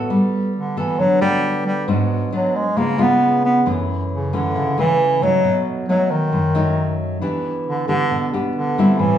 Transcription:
Already playing: nylon-string guitar B3 F#4 A4
0.10 nylon-string guitar G3
0.56 bass clarinet D3
0.77 bass clarinet E3, nylon-string guitar B3 F#4 A4
1.00 nylon-string guitar D3, bass clarinet F#3
1.21 bass clarinet G3, nylon-string guitar B3 F#4 A4
1.67 bass clarinet G3
1.88 nylon-string guitar G#2 F#3 B3 D4
2.32 nylon-string guitar F#3 B3 D4, bass clarinet F#3
2.56 bass clarinet G#3
2.77 nylon-string guitar C#3 G#3 B3 F4, bass clarinet A#3
2.98 nylon-string guitar G#3 B3 F4, bass clarinet B3
3.45 bass clarinet B3
3.66 nylon-string guitar F#2 E3 A3 C#4
4.12 bass clarinet C#3
4.33 bass clarinet D3, nylon-string guitar E3 A3 C#4
4.56 nylon-string guitar C#3
4.78 nylon-string guitar E3 A3 C#4, bass clarinet E3
5.22 nylon-string guitar F#3 A3 D#4, bass clarinet F#3
5.44 nylon-string guitar B2
5.89 bass clarinet F#3, nylon-string guitar F#3 A3 D#4
6.11 bass clarinet D#3
6.32 nylon-string guitar F#2
6.55 nylon-string guitar F#3 A3 D#4
7.22 nylon-string guitar E3 B3 D4 G4
7.67 bass clarinet D3
7.88 bass clarinet D3, nylon-string guitar B3 D4 G4
8.11 nylon-string guitar B2
8.33 nylon-string guitar B3 D4 G4
8.56 bass clarinet D3
8.78 nylon-string guitar G3 C4 E4
8.99 nylon-string guitar A2, bass clarinet E3

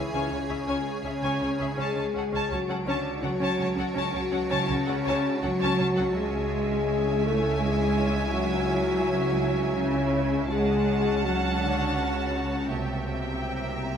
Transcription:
Already playing: synth drone C#2, cello section E3, french horn section E4, ambient pad G#4 C#5 G#5
0.13 double bass section C#2, viola section C#4, violin section C#5 G#5
0.30 double bass section C#2, cello section C#3, french horn section C#4, viola section C#4, violin section C#5 G#5
0.49 double bass section C#2, viola section C#4, violin section G#4 E5
0.67 double bass section C#2, viola section C#4, violin section C#5 G#5
1.03 double bass section C#2, cello section C#3, viola section C#4, french horn section C#4, violin section G#4 E5
1.22 double bass section C#2, viola section C#4, violin section C#5 G#5
1.41 double bass section C#2, viola section C#4, violin section C#5 G#5
1.58 double bass section C#2, viola section C#4, violin section G#4 E5
1.76 double bass section C#2, synth drone C#2, cello section G#3, viola section C#4, ambient pad F#4 C#5 A5, french horn section G#4, violin section C#5
1.80 violin section A5
1.95 double bass section C#2, viola section C#4, violin section C#5 A5
2.13 double bass section C#2, viola section C#4, violin section F#5
2.17 violin section A4
2.32 double bass section C#2, viola section C#4, violin section C#5 A5
2.50 double bass section C#2, cello section F#3, viola section C#4, french horn section F#4, violin section C#5 A5 D7
2.68 double bass section C#2, viola section C#4, violin section A4 F#5
2.86 double bass section C#2, cello section D3, viola section C#4, french horn section D4, violin section C#5 A5
3.21 double bass section C#2, cello section F#3, viola section C#4, french horn section F#4, violin section A4 F#5
3.40 double bass section C#2, viola section C#4, violin section C#5 A5
3.58 double bass section C#2, viola section C#4, violin section C#5 A5
3.75 double bass section C#2, viola section C#4, violin section A4 F#5
3.93 double bass section C#2, cello section F#3, viola section C#4, french horn section F#4, violin section C#5 A5
4.13 double bass section C#2, viola section C#4, violin section C#5 A5
4.31 double bass section C#2, viola section C#4, violin section A4 F#5
4.49 double bass section C#2, viola section C#4, violin section C#5 A5
4.67 double bass section C#2, cello section C#3, viola section C#4, french horn section C#4, violin section C#5 A5
4.86 double bass section C#2, viola section C#4, violin section A4 F#5
5.04 double bass section C#2, viola section C#4, violin section C#5 A5
5.42 double bass section C#2, cello section F#3, viola section C#4, french horn section F#4, violin section A4 F#5
5.59 double bass section C#2, viola section C#4, violin section C#5 A5
5.78 double bass section C#2, viola section C#4, violin section C#5 A5
5.97 double bass section C#2, viola section C#4, violin section A4 F#5
6.15 double bass section C#2, synth drone C#2, cello section G#3, viola section C#4, ambient pad E4 C#5 G#5, french horn section G#4, violin section E5 G#5
7.24 cello section A3, french horn section A4
7.59 cello section G#3, french horn section G#4
8.31 cello section F#3, french horn section F#4
9.75 cello section C#3, french horn section C#4
10.49 synth drone C#2, double bass section C#2, cello section G#3, viola section C#4, ambient pad F#4 C#5 A5, french horn section G#4, violin section F#5 A5
11.23 cello section F#3, french horn section F#4
11.60 cello section D3, french horn section D4
11.96 cello section C#3, french horn section C#4
12.71 synth drone C2, double bass section C2, cello section C3, viola section A#3, french horn section C4, ambient pad G4 E5 A#5, violin section E5 G5

